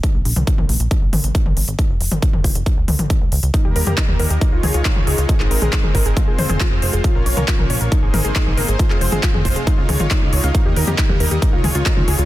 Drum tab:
HH |x-oxx-oxx-oxx-ox|x-oxx-oxx-oxx-ox|x-oxx-oxx-oxx-ox|x-oxx-oxx-oxx-ox|
CP |----------------|----------------|----x-------x---|-x--x-------x---|
T2 |---o-o----o--o--|---o-o----oo----|---o-o----o--o--|---o-o----oo----|
BD |o---o---o---o---|o---o-o-o---o---|o---o---o---o---|o---o-o-o---o---|

HH |x-oxx-oxx-oxx-ox|x-oxx-oxx-oxx-ox|x-oxx-oxx-oxx-ox|
CP |----x-------x---|-x--x-------x---|----x-------x---|
T2 |---o-o----o--o--|---o-o----oo----|---o-o----o--o--|
BD |o---o---o---o---|o---o-o-o---o---|o---o---o---o---|